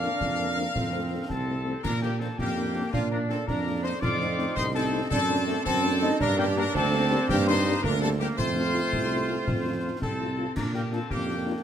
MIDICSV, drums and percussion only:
0, 0, Header, 1, 2, 480
1, 0, Start_track
1, 0, Key_signature, -2, "major"
1, 0, Tempo, 363416
1, 996, Time_signature, 6, 3, 24, 8
1, 15365, End_track
2, 0, Start_track
2, 0, Title_t, "Drums"
2, 35, Note_on_c, 9, 38, 60
2, 167, Note_off_c, 9, 38, 0
2, 276, Note_on_c, 9, 35, 81
2, 276, Note_on_c, 9, 38, 77
2, 408, Note_off_c, 9, 35, 0
2, 408, Note_off_c, 9, 38, 0
2, 754, Note_on_c, 9, 38, 57
2, 886, Note_off_c, 9, 38, 0
2, 998, Note_on_c, 9, 35, 97
2, 998, Note_on_c, 9, 38, 72
2, 1130, Note_off_c, 9, 35, 0
2, 1130, Note_off_c, 9, 38, 0
2, 1715, Note_on_c, 9, 35, 79
2, 1715, Note_on_c, 9, 38, 70
2, 1847, Note_off_c, 9, 35, 0
2, 1847, Note_off_c, 9, 38, 0
2, 2436, Note_on_c, 9, 35, 87
2, 2436, Note_on_c, 9, 38, 78
2, 2436, Note_on_c, 9, 49, 65
2, 2568, Note_off_c, 9, 35, 0
2, 2568, Note_off_c, 9, 38, 0
2, 2568, Note_off_c, 9, 49, 0
2, 2677, Note_on_c, 9, 38, 63
2, 2809, Note_off_c, 9, 38, 0
2, 2915, Note_on_c, 9, 38, 62
2, 3047, Note_off_c, 9, 38, 0
2, 3156, Note_on_c, 9, 35, 71
2, 3156, Note_on_c, 9, 38, 63
2, 3288, Note_off_c, 9, 35, 0
2, 3288, Note_off_c, 9, 38, 0
2, 3877, Note_on_c, 9, 35, 95
2, 3877, Note_on_c, 9, 38, 83
2, 4010, Note_off_c, 9, 35, 0
2, 4010, Note_off_c, 9, 38, 0
2, 4358, Note_on_c, 9, 38, 63
2, 4490, Note_off_c, 9, 38, 0
2, 4597, Note_on_c, 9, 35, 85
2, 4597, Note_on_c, 9, 38, 66
2, 4729, Note_off_c, 9, 35, 0
2, 4729, Note_off_c, 9, 38, 0
2, 5316, Note_on_c, 9, 35, 103
2, 5316, Note_on_c, 9, 38, 79
2, 5316, Note_on_c, 9, 49, 38
2, 5448, Note_off_c, 9, 35, 0
2, 5448, Note_off_c, 9, 38, 0
2, 5448, Note_off_c, 9, 49, 0
2, 5557, Note_on_c, 9, 38, 62
2, 5689, Note_off_c, 9, 38, 0
2, 5795, Note_on_c, 9, 38, 68
2, 5927, Note_off_c, 9, 38, 0
2, 6032, Note_on_c, 9, 35, 87
2, 6032, Note_on_c, 9, 38, 72
2, 6164, Note_off_c, 9, 35, 0
2, 6164, Note_off_c, 9, 38, 0
2, 6751, Note_on_c, 9, 35, 93
2, 6751, Note_on_c, 9, 38, 90
2, 6883, Note_off_c, 9, 35, 0
2, 6883, Note_off_c, 9, 38, 0
2, 7235, Note_on_c, 9, 38, 62
2, 7367, Note_off_c, 9, 38, 0
2, 7477, Note_on_c, 9, 35, 86
2, 7477, Note_on_c, 9, 38, 69
2, 7609, Note_off_c, 9, 35, 0
2, 7609, Note_off_c, 9, 38, 0
2, 8196, Note_on_c, 9, 35, 95
2, 8196, Note_on_c, 9, 38, 93
2, 8196, Note_on_c, 9, 49, 37
2, 8328, Note_off_c, 9, 35, 0
2, 8328, Note_off_c, 9, 38, 0
2, 8328, Note_off_c, 9, 49, 0
2, 8437, Note_on_c, 9, 38, 59
2, 8569, Note_off_c, 9, 38, 0
2, 8675, Note_on_c, 9, 38, 65
2, 8807, Note_off_c, 9, 38, 0
2, 8913, Note_on_c, 9, 35, 85
2, 8913, Note_on_c, 9, 38, 73
2, 9045, Note_off_c, 9, 35, 0
2, 9045, Note_off_c, 9, 38, 0
2, 9630, Note_on_c, 9, 35, 104
2, 9630, Note_on_c, 9, 38, 91
2, 9763, Note_off_c, 9, 35, 0
2, 9763, Note_off_c, 9, 38, 0
2, 10113, Note_on_c, 9, 38, 65
2, 10245, Note_off_c, 9, 38, 0
2, 10356, Note_on_c, 9, 35, 81
2, 10356, Note_on_c, 9, 38, 70
2, 10488, Note_off_c, 9, 35, 0
2, 10488, Note_off_c, 9, 38, 0
2, 11075, Note_on_c, 9, 35, 87
2, 11075, Note_on_c, 9, 38, 80
2, 11075, Note_on_c, 9, 49, 38
2, 11207, Note_off_c, 9, 35, 0
2, 11207, Note_off_c, 9, 38, 0
2, 11207, Note_off_c, 9, 49, 0
2, 11319, Note_on_c, 9, 38, 62
2, 11451, Note_off_c, 9, 38, 0
2, 11560, Note_on_c, 9, 38, 62
2, 11692, Note_off_c, 9, 38, 0
2, 11794, Note_on_c, 9, 35, 82
2, 11794, Note_on_c, 9, 38, 59
2, 11926, Note_off_c, 9, 35, 0
2, 11926, Note_off_c, 9, 38, 0
2, 12516, Note_on_c, 9, 35, 102
2, 12516, Note_on_c, 9, 38, 71
2, 12648, Note_off_c, 9, 35, 0
2, 12648, Note_off_c, 9, 38, 0
2, 13235, Note_on_c, 9, 35, 80
2, 13235, Note_on_c, 9, 38, 76
2, 13367, Note_off_c, 9, 35, 0
2, 13367, Note_off_c, 9, 38, 0
2, 13954, Note_on_c, 9, 35, 87
2, 13954, Note_on_c, 9, 38, 85
2, 13954, Note_on_c, 9, 49, 67
2, 14086, Note_off_c, 9, 35, 0
2, 14086, Note_off_c, 9, 38, 0
2, 14086, Note_off_c, 9, 49, 0
2, 14192, Note_on_c, 9, 38, 60
2, 14324, Note_off_c, 9, 38, 0
2, 14432, Note_on_c, 9, 38, 58
2, 14564, Note_off_c, 9, 38, 0
2, 14670, Note_on_c, 9, 35, 80
2, 14670, Note_on_c, 9, 38, 64
2, 14802, Note_off_c, 9, 35, 0
2, 14802, Note_off_c, 9, 38, 0
2, 15365, End_track
0, 0, End_of_file